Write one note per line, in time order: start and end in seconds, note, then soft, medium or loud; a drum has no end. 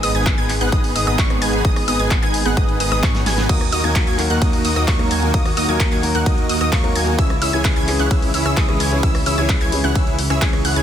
0.00 0.12 G#1 loud
0.00 7.15 D#3 medium
0.00 3.46 G#3 medium
0.00 3.46 B3 medium
0.00 0.12 B3 loud
0.00 0.12 D#4 medium
0.00 3.46 G#4 medium
0.00 0.12 G#4 medium
0.00 0.12 B4 medium
0.00 0.12 D#5 loud
0.00 0.12 D#6 loud
0.00 open hi-hat loud
0.15 0.35 G#1 loud
0.15 0.35 B3 medium
0.15 0.35 D#4 medium
0.15 0.35 G#4 medium
0.15 0.35 B4 medium
0.15 0.35 G#5 medium
0.15 0.35 G#6 medium
0.15 closed hi-hat soft
0.26 kick loud
0.26 clap loud
0.26 closed hi-hat medium
0.38 0.59 G#1 loud
0.38 0.51 B3 loud
0.38 0.51 D#4 medium
0.38 0.51 G#4 medium
0.38 0.51 B4 medium
0.38 0.51 G#5 loud
0.38 0.51 G#6 loud
0.38 closed hi-hat soft
0.49 clap soft
0.49 open hi-hat loud
0.61 0.70 G#1 loud
0.61 0.70 B3 medium
0.61 0.70 D#4 medium
0.61 0.70 G#4 medium
0.61 0.70 B4 medium
0.61 0.70 F#5 medium
0.61 0.70 F#6 medium
0.61 closed hi-hat soft
0.72 0.93 G#1 loud
0.72 0.93 B3 medium
0.72 0.93 D#4 medium
0.72 0.93 G#4 medium
0.72 0.93 B4 medium
0.72 0.93 D#5 medium
0.72 0.93 D#6 medium
0.72 kick loud
0.72 closed hi-hat medium
0.84 open hi-hat medium
0.95 1.05 G#1 medium
0.95 1.05 B3 medium
0.95 1.05 D#4 medium
0.95 1.05 G#4 medium
0.95 1.05 B4 medium
0.95 1.05 D#5 medium
0.95 1.05 D#6 medium
0.95 open hi-hat loud
1.07 1.16 G#1 loud
1.07 1.16 B3 medium
1.07 1.16 D#4 medium
1.07 1.16 G#4 medium
1.07 1.16 B4 medium
1.07 1.16 D#5 loud
1.07 1.16 D#6 loud
1.07 cross-stick medium
1.07 closed hi-hat soft
1.19 1.39 G#1 loud
1.19 1.39 B3 medium
1.19 1.39 D#4 medium
1.19 1.39 G#4 medium
1.19 1.39 B4 medium
1.19 1.39 C#5 loud
1.19 1.39 C#6 loud
1.19 kick loud
1.19 clap loud
1.19 closed hi-hat medium
1.30 cross-stick medium
1.30 closed hi-hat soft
1.42 1.62 G#1 loud
1.42 1.62 B3 medium
1.42 1.62 D#4 medium
1.42 1.62 G#4 medium
1.42 1.62 B4 medium
1.42 1.62 G#5 medium
1.42 1.62 G#6 medium
1.42 open hi-hat loud
1.53 closed hi-hat soft
1.65 1.86 G#1 loud
1.65 1.78 B3 medium
1.65 1.78 D#4 medium
1.65 1.78 G#4 medium
1.65 1.78 B4 medium
1.65 1.78 D#5 loud
1.65 1.78 D#6 loud
1.65 kick loud
1.65 closed hi-hat medium
1.76 cross-stick medium
1.76 open hi-hat medium
1.88 1.97 G#1 loud
1.88 1.97 B3 loud
1.88 1.97 D#4 medium
1.88 1.97 G#4 medium
1.88 1.97 B4 medium
1.88 1.97 D#5 loud
1.88 1.97 D#6 loud
1.88 open hi-hat loud
1.99 2.20 G#1 loud
1.99 2.20 B3 medium
1.99 2.20 D#4 medium
1.99 2.20 G#4 medium
1.99 2.20 B4 medium
1.99 2.20 G#5 medium
1.99 2.20 G#6 medium
1.99 closed hi-hat soft
2.11 kick loud
2.11 clap loud
2.11 closed hi-hat medium
2.22 2.43 G#1 loud
2.22 2.36 B3 loud
2.22 2.36 D#4 medium
2.22 2.36 G#4 medium
2.22 2.36 B4 medium
2.22 2.36 G#5 loud
2.22 2.36 G#6 loud
2.22 clap soft
2.22 closed hi-hat soft
2.34 open hi-hat loud
2.45 2.55 G#1 medium
2.45 2.54 B3 medium
2.45 2.54 D#4 medium
2.45 2.54 G#4 medium
2.45 2.54 B4 medium
2.45 2.54 F#5 loud
2.45 2.54 F#6 medium
2.45 closed hi-hat soft
2.57 2.78 G#1 loud
2.57 2.77 B3 medium
2.57 2.77 D#4 medium
2.57 2.77 G#4 medium
2.57 2.77 B4 medium
2.57 2.77 D#5 medium
2.57 2.77 D#6 medium
2.57 kick loud
2.57 closed hi-hat medium
2.69 closed hi-hat soft
2.80 2.89 G#1 loud
2.80 2.90 B3 medium
2.80 2.90 D#4 medium
2.80 2.90 G#4 medium
2.80 2.90 B4 medium
2.80 2.90 D#5 medium
2.80 2.90 D#6 medium
2.80 open hi-hat loud
2.92 3.01 G#1 loud
2.92 3.00 B3 medium
2.92 3.00 D#4 medium
2.92 3.00 G#4 medium
2.92 3.00 B4 medium
2.92 3.00 D#5 loud
2.92 3.00 D#6 loud
2.92 cross-stick medium
2.92 closed hi-hat soft
3.03 3.24 G#2 loud
3.03 3.24 B3 medium
3.03 3.24 D#4 medium
3.03 3.24 G#4 medium
3.03 3.24 B4 medium
3.03 3.24 C#5 loud
3.03 3.24 C#6 loud
3.03 kick loud
3.03 snare medium
3.03 clap loud
3.03 closed hi-hat medium
3.15 snare medium
3.15 closed hi-hat soft
3.26 3.47 G#1 loud
3.26 3.47 B3 medium
3.26 3.47 D#4 medium
3.26 3.47 G#4 medium
3.26 3.47 B4 medium
3.26 3.47 G#5 loud
3.26 3.47 G#6 medium
3.26 snare medium
3.26 open hi-hat loud
3.38 snare medium
3.38 closed hi-hat soft
3.49 3.70 D#2 loud
3.49 3.58 F#3 medium
3.49 7.15 F#3 medium
3.49 3.58 A#3 medium
3.49 3.63 A#3 loud
3.49 7.15 A#3 medium
3.49 3.63 D#4 medium
3.49 3.58 D#4 medium
3.49 3.63 F#4 medium
3.49 7.15 F#4 medium
3.49 3.63 A#4 medium
3.49 3.58 A#4 loud
3.49 3.63 D#5 loud
3.49 3.63 D#6 loud
3.49 kick loud
3.49 closed hi-hat medium
3.49 ride medium
3.49 crash medium
3.61 cross-stick medium
3.61 closed hi-hat soft
3.72 3.82 D#2 loud
3.72 3.81 A#3 loud
3.72 3.81 D#4 medium
3.72 3.81 F#4 medium
3.72 3.81 A#4 medium
3.72 3.81 D#5 loud
3.72 3.81 D#6 loud
3.72 open hi-hat loud
3.83 4.05 D#2 medium
3.83 4.16 F#3 medium
3.83 4.16 A#3 medium
3.83 4.04 A#3 medium
3.83 4.04 D#4 medium
3.83 4.16 D#4 medium
3.83 4.04 F#4 medium
3.83 4.04 A#4 medium
3.83 4.16 A#4 loud
3.83 4.04 G#5 medium
3.83 4.04 G#6 medium
3.83 closed hi-hat soft
3.95 kick loud
3.95 clap loud
3.95 closed hi-hat medium
3.95 ride medium
4.07 4.28 D#2 medium
4.07 4.20 A#3 loud
4.07 4.20 D#4 medium
4.07 4.20 F#4 medium
4.07 4.20 A#4 medium
4.07 4.20 G#5 loud
4.07 4.20 G#6 loud
4.07 closed hi-hat soft
4.18 4.62 F#3 medium
4.18 4.62 A#3 medium
4.18 4.62 D#4 medium
4.18 4.62 A#4 loud
4.18 clap soft
4.18 open hi-hat loud
4.30 4.39 D#2 loud
4.30 4.39 A#3 medium
4.30 4.39 D#4 medium
4.30 4.39 F#4 medium
4.30 4.39 A#4 medium
4.30 4.39 F#5 medium
4.30 4.39 F#6 medium
4.30 closed hi-hat soft
4.42 4.62 D#2 medium
4.42 4.62 A#3 medium
4.42 4.62 D#4 medium
4.42 4.62 F#4 medium
4.42 4.62 A#4 medium
4.42 4.62 D#5 medium
4.42 4.62 D#6 medium
4.42 kick loud
4.42 closed hi-hat medium
4.42 ride medium
4.53 open hi-hat medium
4.65 4.74 D#2 loud
4.65 4.75 A#3 medium
4.65 4.75 D#4 medium
4.65 4.75 F#4 medium
4.65 4.75 A#4 medium
4.65 4.75 D#5 medium
4.65 4.75 D#6 medium
4.65 open hi-hat loud
4.76 4.85 D#2 loud
4.76 4.85 A#3 medium
4.76 4.85 D#4 medium
4.76 4.85 F#4 medium
4.76 4.85 A#4 medium
4.76 4.85 D#5 loud
4.76 4.85 D#6 loud
4.76 cross-stick medium
4.76 closed hi-hat soft
4.87 5.09 D#2 loud
4.87 4.97 F#3 medium
4.87 4.98 A#3 medium
4.87 5.08 A#3 medium
4.87 5.08 D#4 medium
4.87 4.98 D#4 medium
4.87 5.08 F#4 medium
4.87 5.08 A#4 medium
4.87 4.98 A#4 medium
4.87 5.08 C#5 loud
4.87 5.08 C#6 loud
4.87 kick loud
4.87 clap loud
4.87 closed hi-hat medium
4.87 ride medium
4.99 5.19 F#3 loud
4.99 5.20 A#3 medium
4.99 5.20 D#4 medium
4.99 5.20 A#4 loud
4.99 cross-stick medium
4.99 closed hi-hat soft
5.11 5.32 D#2 loud
5.11 5.31 A#3 medium
5.11 5.31 D#4 medium
5.11 5.31 F#4 medium
5.11 5.31 A#4 medium
5.11 5.31 G#5 medium
5.11 5.31 G#6 medium
5.11 open hi-hat loud
5.22 5.31 F#3 medium
5.22 5.31 A#3 medium
5.22 5.31 D#4 medium
5.22 5.31 A#4 medium
5.22 closed hi-hat soft
5.33 5.55 D#2 loud
5.33 5.42 F#3 medium
5.33 5.42 A#3 medium
5.33 5.47 A#3 loud
5.33 5.47 D#4 medium
5.33 5.43 D#4 medium
5.33 5.47 F#4 medium
5.33 5.47 A#4 medium
5.33 5.43 A#4 loud
5.33 5.47 D#5 loud
5.33 5.47 D#6 loud
5.33 kick loud
5.33 closed hi-hat medium
5.33 ride medium
5.46 cross-stick medium
5.46 open hi-hat medium
5.57 5.66 D#2 loud
5.57 5.66 A#3 loud
5.57 5.66 D#4 medium
5.57 5.66 F#4 medium
5.57 5.66 A#4 medium
5.57 5.66 D#5 loud
5.57 5.66 D#6 loud
5.57 open hi-hat loud
5.68 5.89 D#2 loud
5.68 6.00 F#3 medium
5.68 6.00 A#3 medium
5.68 5.89 A#3 medium
5.68 6.00 D#4 medium
5.68 5.89 D#4 medium
5.68 5.89 F#4 medium
5.68 5.89 A#4 medium
5.68 6.01 A#4 loud
5.68 5.89 G#5 medium
5.68 5.89 G#6 medium
5.80 kick loud
5.80 clap loud
5.80 closed hi-hat medium
5.80 ride medium
5.92 6.12 D#2 loud
5.92 6.05 A#3 loud
5.92 6.05 D#4 medium
5.92 6.05 F#4 medium
5.92 6.05 A#4 medium
5.92 6.05 G#5 loud
5.92 6.05 G#6 loud
5.92 clap soft
5.92 closed hi-hat soft
6.03 6.46 F#3 loud
6.03 6.46 A#3 medium
6.03 6.47 D#4 medium
6.03 6.47 A#4 loud
6.03 open hi-hat loud
6.15 6.24 D#2 loud
6.15 6.24 A#3 medium
6.15 6.24 D#4 medium
6.15 6.24 F#4 medium
6.15 6.24 A#4 medium
6.15 6.24 F#5 loud
6.15 6.24 F#6 medium
6.15 closed hi-hat soft
6.26 6.47 D#2 loud
6.26 6.47 A#3 medium
6.26 6.47 D#4 medium
6.26 6.47 F#4 medium
6.26 6.47 A#4 medium
6.26 6.47 D#5 medium
6.26 6.47 D#6 medium
6.26 kick loud
6.26 closed hi-hat medium
6.26 ride medium
6.38 closed hi-hat soft
6.49 6.59 D#2 loud
6.49 6.59 A#3 medium
6.49 6.59 D#4 medium
6.49 6.59 F#4 medium
6.49 6.59 A#4 medium
6.49 6.59 D#5 medium
6.49 6.59 D#6 medium
6.49 open hi-hat loud
6.61 6.70 D#2 loud
6.61 6.70 A#3 medium
6.61 6.70 D#4 medium
6.61 6.70 F#4 medium
6.61 6.70 A#4 medium
6.61 6.70 D#5 loud
6.61 6.70 D#6 loud
6.61 cross-stick medium
6.61 closed hi-hat soft
6.72 6.93 D#2 loud
6.72 6.82 F#3 medium
6.72 6.82 A#3 medium
6.72 6.93 A#3 medium
6.72 6.93 D#4 medium
6.72 6.82 D#4 medium
6.72 6.93 F#4 medium
6.72 6.93 A#4 medium
6.72 6.83 A#4 medium
6.72 6.93 C#5 loud
6.72 6.93 C#6 loud
6.72 kick loud
6.72 clap loud
6.72 closed hi-hat medium
6.72 ride medium
6.83 7.04 F#3 medium
6.83 7.04 A#3 medium
6.83 7.04 D#4 medium
6.83 7.05 A#4 loud
6.83 cross-stick medium
6.83 closed hi-hat soft
6.95 7.16 D#2 loud
6.95 7.16 A#3 medium
6.95 7.16 D#4 medium
6.95 7.16 F#4 medium
6.95 7.16 A#4 medium
6.95 7.16 G#5 medium
6.95 7.16 G#6 medium
6.95 open hi-hat loud
7.07 7.16 F#3 medium
7.07 7.16 A#3 medium
7.07 7.16 D#4 medium
7.07 7.16 A#4 medium
7.07 closed hi-hat soft
7.18 7.39 C#2 loud
7.18 10.83 C#3 medium
7.18 7.27 E3 medium
7.18 10.83 E3 medium
7.18 7.27 G#3 medium
7.18 9.01 G#3 medium
7.18 7.32 C#4 loud
7.18 7.27 C#4 medium
7.18 10.83 E4 medium
7.18 7.32 E4 medium
7.18 7.32 G#4 medium
7.18 7.27 G#4 loud
7.18 7.32 C#5 medium
7.18 7.32 E5 loud
7.18 7.32 E6 loud
7.18 kick loud
7.18 closed hi-hat medium
7.18 ride medium
7.30 cross-stick medium
7.30 closed hi-hat soft
7.42 7.51 C#2 loud
7.42 7.50 C#4 loud
7.42 7.50 E4 medium
7.42 7.50 G#4 medium
7.42 7.50 C#5 medium
7.42 7.50 E5 loud
7.42 7.50 E6 loud
7.42 open hi-hat loud
7.53 7.74 C#2 loud
7.53 7.85 E3 medium
7.53 7.85 G#3 medium
7.53 7.74 C#4 medium
7.53 7.85 C#4 medium
7.53 7.74 E4 medium
7.53 7.74 G#4 medium
7.53 7.85 G#4 loud
7.53 7.74 C#5 medium
7.53 7.74 G#5 medium
7.53 7.74 G#6 medium
7.53 closed hi-hat soft
7.65 kick loud
7.65 clap loud
7.65 closed hi-hat medium
7.65 ride medium
7.76 7.97 C#2 loud
7.76 7.90 C#4 loud
7.76 7.90 E4 medium
7.76 7.90 G#4 medium
7.76 7.90 C#5 medium
7.76 7.90 G#5 loud
7.76 7.90 G#6 loud
7.76 closed hi-hat soft
7.87 8.31 E3 loud
7.87 8.31 G#3 medium
7.87 8.31 C#4 medium
7.87 8.32 G#4 loud
7.87 clap soft
7.87 open hi-hat loud
7.99 8.09 C#2 medium
7.99 8.08 C#4 medium
7.99 8.08 E4 medium
7.99 8.08 G#4 medium
7.99 8.08 C#5 medium
7.99 8.08 F#5 medium
7.99 8.08 F#6 medium
7.99 closed hi-hat soft
8.11 8.32 C#2 loud
8.11 8.31 C#4 medium
8.11 8.31 E4 medium
8.11 8.31 G#4 medium
8.11 8.31 C#5 medium
8.11 8.31 E5 medium
8.11 8.31 E6 medium
8.11 kick loud
8.11 closed hi-hat medium
8.11 ride medium
8.22 open hi-hat medium
8.34 8.43 C#2 loud
8.34 8.44 C#4 medium
8.34 8.44 E4 medium
8.34 8.44 G#4 medium
8.34 8.44 C#5 medium
8.34 8.44 E5 medium
8.34 8.44 E6 medium
8.34 open hi-hat loud
8.45 8.55 C#2 loud
8.45 8.54 C#4 medium
8.45 8.54 E4 medium
8.45 8.54 G#4 medium
8.45 8.54 C#5 medium
8.45 8.54 E5 loud
8.45 8.54 E6 loud
8.45 cross-stick medium
8.45 closed hi-hat soft
8.57 8.78 C#2 loud
8.57 8.67 E3 medium
8.57 8.67 G#3 medium
8.57 8.77 C#4 loud
8.57 8.67 C#4 medium
8.57 8.77 E4 medium
8.57 8.77 G#4 medium
8.57 8.67 G#4 medium
8.57 8.77 C#5 medium
8.57 8.77 D#5 loud
8.57 8.77 D#6 loud
8.57 kick loud
8.57 clap loud
8.57 closed hi-hat medium
8.57 ride medium
8.68 8.89 E3 medium
8.68 8.89 G#3 medium
8.68 8.89 C#4 medium
8.68 8.89 G#4 loud
8.68 cross-stick medium
8.68 closed hi-hat soft
8.80 9.01 C#2 loud
8.80 9.00 C#4 medium
8.80 9.00 E4 medium
8.80 9.00 G#4 medium
8.80 9.00 C#5 medium
8.80 9.00 G#5 loud
8.80 9.00 G#6 medium
8.80 open hi-hat loud
8.91 9.00 E3 medium
8.91 9.00 G#3 medium
8.91 9.01 C#4 medium
8.91 9.01 G#4 medium
9.03 9.24 C#2 loud
9.03 9.11 E3 medium
9.03 10.83 F#3 medium
9.03 9.12 G#3 medium
9.03 9.17 C#4 loud
9.03 9.12 C#4 medium
9.03 9.17 E4 medium
9.03 9.17 G#4 medium
9.03 9.12 G#4 loud
9.03 9.17 C#5 medium
9.03 9.17 E5 loud
9.03 9.17 E6 loud
9.03 kick loud
9.03 closed hi-hat medium
9.03 ride medium
9.15 cross-stick medium
9.15 open hi-hat medium
9.26 9.35 C#2 loud
9.26 9.35 C#4 loud
9.26 9.35 E4 medium
9.26 9.35 G#4 medium
9.26 9.35 C#5 medium
9.26 9.35 E5 loud
9.26 9.35 E6 loud
9.26 open hi-hat loud
9.37 9.59 C#2 loud
9.37 9.69 E3 medium
9.37 9.70 G#3 medium
9.37 9.58 C#4 medium
9.37 9.70 C#4 medium
9.37 9.58 E4 medium
9.37 9.58 G#4 medium
9.37 9.70 G#4 loud
9.37 9.58 C#5 medium
9.37 9.58 G#5 medium
9.37 9.58 G#6 medium
9.49 kick loud
9.49 clap loud
9.49 closed hi-hat medium
9.49 ride medium
9.61 9.82 C#2 loud
9.61 9.74 C#4 loud
9.61 9.74 E4 medium
9.61 9.74 G#4 medium
9.61 9.74 C#5 medium
9.61 9.74 G#5 loud
9.61 9.74 G#6 loud
9.61 clap soft
9.61 closed hi-hat soft
9.72 10.16 E3 medium
9.72 10.16 G#3 medium
9.72 10.16 C#4 medium
9.72 10.16 G#4 loud
9.72 open hi-hat loud
9.84 9.93 C#2 medium
9.84 9.93 C#4 medium
9.84 9.93 E4 medium
9.84 9.93 G#4 medium
9.84 9.93 C#5 medium
9.84 9.93 F#5 medium
9.84 9.93 F#6 medium
9.84 closed hi-hat soft
9.95 10.28 C#2 loud
9.95 10.16 C#4 medium
9.95 10.16 E4 medium
9.95 10.16 G#4 medium
9.95 10.16 C#5 medium
9.95 10.16 E5 medium
9.95 10.16 E6 medium
9.95 kick loud
9.95 closed hi-hat medium
9.95 ride medium
10.07 closed hi-hat soft
10.19 open hi-hat loud
10.30 10.39 C#2 loud
10.30 10.39 C#4 medium
10.30 10.39 E4 medium
10.30 10.39 G#4 medium
10.30 10.39 C#5 medium
10.30 10.39 E5 medium
10.30 10.39 E6 medium
10.30 cross-stick medium
10.30 closed hi-hat soft
10.41 10.62 C#2 loud
10.41 10.83 E3 medium
10.41 10.83 G#3 medium
10.41 10.61 C#4 medium
10.41 10.83 C#4 medium
10.41 10.61 E4 medium
10.41 10.61 G#4 medium
10.41 10.83 G#4 medium
10.41 10.61 C#5 medium
10.41 10.61 G#5 medium
10.41 10.61 G#6 medium
10.41 kick loud
10.41 clap loud
10.41 closed hi-hat medium
10.41 ride medium
10.53 cross-stick medium
10.53 closed hi-hat soft
10.65 10.74 C#2 loud
10.65 10.75 C#4 medium
10.65 10.75 E4 medium
10.65 10.75 G#4 medium
10.65 10.75 C#5 medium
10.65 10.75 F#5 loud
10.65 10.75 F#6 medium
10.65 open hi-hat loud
10.76 10.83 C#2 loud
10.76 10.83 C#4 medium
10.76 10.83 E4 medium
10.76 10.83 G#4 medium
10.76 10.83 C#5 medium
10.76 10.83 G#5 loud
10.76 10.83 G#6 loud
10.76 closed hi-hat soft